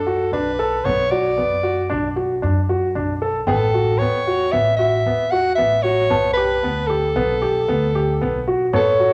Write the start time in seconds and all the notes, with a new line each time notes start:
Already playing: F#2 A4
0.07 F#4
0.32 B1 D4 B4
0.59 A4, frame drum
0.85 B1 B3 C#5, frame drum
1.11 F#4 D5
1.38 F#2 B3
1.63 F#4, frame drum
1.90 B1 D4
2.16 F#4, frame drum
2.42 F#2 D4
2.69 F#4
2.95 B1 D4, frame drum
3.21 A4, frame drum
3.47 A1 B3 A4 G5, frame drum
3.74 F#4
3.99 E2 B3 C#5
4.27 F#4
4.52 A1 B3 E5, frame drum
4.77 F#4 E5, frame drum
5.06 E2 B3
5.31 F#4 F#5
5.55 B3 E5
5.60 A1
5.83 F#4 C#5
6.10 B1 B3 A5, frame drum
6.34 G4 B4
6.63 D2 B3
6.87 G4 A4
7.16 B1 B3
7.42 G4, frame drum
7.68 D2 B3
7.95 G4
8.21 B1 B3
8.48 F#4
8.73 A1 B3 A4 C#5, frame drum
9.00 F#4